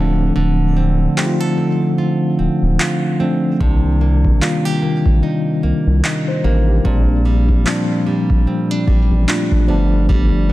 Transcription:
Already playing: D1 D3 F3 A3 C4 D4 F4 A4
0.36 D1 D3
0.77 C4
1.17 F3 A3 C4 D#4 G4, clap
1.26 F4
1.41 A4
1.57 C4
1.98 F4
2.39 D1 C4
2.62 D1
2.79 F4, clap
3.20 F3 A3 C4 D4
3.60 C2 C3 D#3 G3 A#3 D4, kick
4.01 A#3
4.25 kick
4.41 D#3 G3 A#3 F4, clap
4.65 G4
4.82 A#3
5.06 kick
5.23 D#4
5.63 C2 A#3
5.87 C2
6.04 D#4, clap
6.28 D#4 C5
6.44 A1 A#3 D4 A#4
6.69 A#3 G4
6.84 A#1 A#2 F3 G3 C4 D4, kick
7.25 G3
7.49 kick
7.65 F3 G3 C4 D4 F4, clap
8.07 G3
8.30 kick
8.47 C4
8.71 D4
8.87 A1 G3 A#3 G4, kick
9.11 A1
9.28 A3 D4 F4, clap
9.52 F3 D4, kick
9.68 G1 F3 G3 A3 B3 D4
10.09 G3, kick
10.49 B3

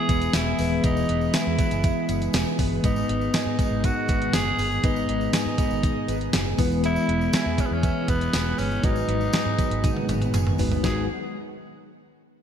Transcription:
Already playing: B2 E3 G#3 B3 E4 G#4 B4
0.09 E1 B3, kick, closed hi-hat, tambourine
0.22 closed hi-hat, tambourine
0.33 E1 E4 G#4, snare, closed hi-hat, tambourine
0.58 D#1 E3 G#3 B3 G#4 B4, open hi-hat, tambourine
0.84 E1 B3 D#4, kick, closed hi-hat, tambourine
0.97 tambourine
1.09 E1 B3, closed hi-hat
1.21 tambourine
1.33 E4 G#4, snare, closed hi-hat, tambourine
1.47 E2
1.58 B3, kick, closed hi-hat, tambourine
1.71 F#1, closed hi-hat, tambourine
1.83 E4, kick, closed hi-hat, tambourine
2.08 F#1 B3, closed hi-hat, tambourine
2.21 closed hi-hat, tambourine
2.33 E1 G#4, snare, closed hi-hat, tambourine
2.59 G1 B3, kick, open hi-hat, tambourine
2.83 G#1 G#2 D#3 G#3 B3 D#4 B4, kick, closed hi-hat, tambourine
2.96 tambourine
3.09 G#1 B3, closed hi-hat
3.21 tambourine
3.34 D#4 G#4, snare, closed hi-hat, tambourine
3.46 G#2
3.59 B3, kick, closed hi-hat, tambourine
3.71 G#1
3.84 D#4 F#4, kick, closed hi-hat, tambourine
4.08 G#1 B3, kick, closed hi-hat, tambourine
4.22 closed hi-hat
4.33 F#1 G#4, snare, closed hi-hat, tambourine
4.58 G1 B3, open hi-hat, tambourine
4.71 tambourine
4.82 G#1 G#2 G#3 B3 D#4 B4, kick, closed hi-hat, tambourine
4.96 tambourine
5.09 G#1 B3, closed hi-hat
5.21 tambourine
5.33 D#4 G#4, snare, closed hi-hat, tambourine
5.46 G#2
5.58 B3, kick, closed hi-hat, tambourine
5.71 G#1, tambourine
5.83 D#4, kick, closed hi-hat, tambourine
6.08 G#1 B3, closed hi-hat, tambourine
6.21 closed hi-hat
6.33 F#1 G#4, snare, closed hi-hat, tambourine
6.57 E1 B2 E3 G#3 B3 E4 B4, kick, open hi-hat, tambourine
6.71 tambourine
6.84 B3 E4, closed hi-hat, tambourine
6.96 tambourine
7.08 E1 B3, closed hi-hat
7.21 tambourine
7.33 E4 G#4, muted fingered electric bass stroke, snare, closed hi-hat, tambourine
7.46 E2
7.58 B3 C#4, kick, closed hi-hat, tambourine
7.66 B3
7.71 E2 C#4
7.83 E4, kick, closed hi-hat, tambourine
8.08 E1 B3, kick, closed hi-hat, tambourine
8.21 closed hi-hat, tambourine
8.33 E1 G#4, snare, closed hi-hat, tambourine
8.58 G1 B3 C#4, open hi-hat, tambourine
8.71 tambourine
8.82 G#1 G#2 D#3 F#3 G#3 B3 D#4 F#4 B4, kick, closed hi-hat, tambourine
8.96 tambourine
9.08 G#1 B3, closed hi-hat
9.21 tambourine
9.33 G#4, muted fingered electric bass stroke, snare, closed hi-hat, tambourine
9.46 G#2
9.59 B3, kick, closed hi-hat, tambourine
9.71 G#1, closed hi-hat
9.84 D#4, kick, closed hi-hat, high tom, tambourine
9.97 high tom
10.09 G#1 B3, closed hi-hat, mid tom, tambourine
10.21 closed hi-hat, mid tom, tambourine
10.34 F#1 G#4, closed hi-hat, mid tom, tambourine
10.47 mid tom
10.58 G1 G#3 B3 D#4 F#4 B4, floor tom, open hi-hat, tambourine
10.71 floor tom, tambourine
10.83 G#1 D#3 F#3 G#3 B3 D#4 F#4 G#4 B4, kick, snare, tambourine

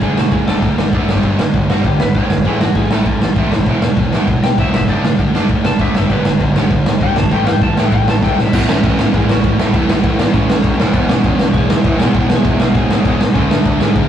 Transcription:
0.02 F#1 D3 A3 D4 G#4, kick, crash
0.17 E1 D3 A3 F#4, snare
0.32 F#1 D3 A3 G#4, kick, crash
0.47 F#1 D3 A3 D4 A4, snare
0.62 F#1 D3 A3, kick, crash
0.78 F#1 D3 A3, snare
0.93 F#1 D3 A3 D4, kick, crash
1.08 G1 G2 D3 G3, snare
1.16 kick
1.23 G1 G2 D3 G3, kick, crash
1.38 G1 G2 D3, snare
1.54 G1 G2 D3, kick, crash
1.69 G1 G2 D3 G3 F#4, snare
1.85 G1 G2 D3 G4, kick, crash
1.99 G1 G2 D3 B4, snare
2.15 G1 G2 D3 G3 C#5, kick, crash
2.30 G1 G2 D3, snare
2.38 kick
2.45 A1 A2 E3 A3 G#4, kick, crash
2.61 F#1 A2 E3 F#4, snare
2.75 A1 A2 E3 G#4, kick, crash
2.91 A1 A2 E3 A3 A4, snare
3.05 A1 A2 E3, kick, crash
3.21 A1 A2 E3, snare
3.36 A1 A2 E3 A3, kick, crash
3.52 D#2 A2 E3, snare
3.59 kick
3.66 E1 E2 B2 E3, kick, crash
3.82 E1 E2 B2, snare
3.97 E1 E2 B2, kick, crash
4.13 E1 E2 B2 E3, snare
4.28 E1 E2 B2, kick, crash
4.43 E1 E2 B2 G5, snare
4.58 E1 E2 B2 E3 E5, kick, crash
4.74 E1 E2 B2 E5, snare
4.81 kick
4.88 F#1 D3 A3 D4 D5, kick, crash
5.04 E1 D3 A3, snare
5.19 F#1 D3 A3, kick, crash
5.35 F#1 D3 A3 D4, snare
5.49 F#1 D3 A3, kick, crash
5.65 F#1 D3 A3 A5, snare
5.79 F#1 D3 A3 D4 E5, kick, crash
5.95 G1 G2 D3 G3 E5, snare
6.02 kick
6.10 G1 G2 D3 G3 B4, kick, crash
6.25 G1 G2 D3, snare
6.40 G1 G2 D3, kick, crash
6.56 G1 G2 D3 G3, snare
6.71 G1 G2 D3, kick, crash
6.86 G1 G2 D3, snare
7.01 G1 G2 D3 G3 G5, kick, crash
7.16 B1 G2 D3 A5, snare
7.24 kick
7.31 A1 A2 E3 A3 G5, kick, crash
7.47 F#1 A2 E3 G5, snare
7.61 A1 A2 E3 A5, kick, crash
7.77 A1 A2 E3 A3 G5, snare
7.92 A1 A2 E3 G5, kick, crash
8.08 A1 A2 E3 A5, snare
8.23 A1 A2 E3 A3 G5, kick, snare
8.38 E1 A2 E3 E5, snare
8.53 A1 A2 E3 A3 B3, kick, crash
8.69 A1 C#4, snare
8.84 A1, kick, crash
8.99 E2, snare
9.14 A1 G#4, kick, crash
9.29 A1 F#4, snare
9.44 A1, kick, crash
9.59 A1 A2 E3 A3, snare
9.73 A1 A2 E3 E4, kick, crash
9.78 A3
9.89 A1, snare
10.03 A1, kick, crash
10.19 E2, snare
10.33 A1 C#4, kick, crash
10.50 A1, snare
10.64 A1, kick, crash
10.79 E1 E2 B2 E3, snare
10.93 E1 B3, kick, crash
11.09 E1 C#4, snare
11.24 E1, kick, crash
11.39 B1, snare
11.53 E1 G#4, kick, crash
11.70 E1, snare
11.76 E4
11.84 E1 E2 B2 E3, kick, crash
11.99 E1 E2 B2 G#4, snare
12.03 E3
12.13 E1 B3, kick, crash
12.30 E1, snare
12.36 G#4
12.44 E1, kick, crash
12.59 B1 F#4, snare
12.74 E1 G#4, kick, crash
12.90 E1, snare
13.05 E1 E2 B2 E3, kick, crash
13.21 E1, snare
13.34 D2 D3 A3 C#4, kick, crash
13.38 D4
13.50 D2 D4, snare
13.65 D2, kick, crash
13.80 A2 G#4, snare
13.96 D2, kick, crash

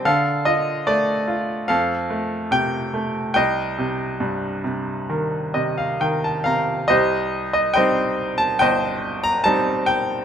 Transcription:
0.05 D3 A4 F5
0.45 F4 D#5
0.87 A3 D5
1.28 F4
1.68 F2 A4 F5
2.10 A3
2.51 C3 G5
2.94 A3
3.34 C2 D#5 G5
3.78 C3
4.20 G2
4.64 C3
5.10 D#3
5.54 C3 D#5
5.78 F5
6.01 D#3 G5
6.24 A5
6.44 C3 F5 A#5
6.88 C2 G4 C5 D#5
7.53 D#5
7.74 G3 C4 C5 D#5 G5
7.78 D#4
8.38 A5
8.59 G1 C5 D#5 G5
9.24 A#5
9.44 G3 C4 D#4 A5
9.86 G5

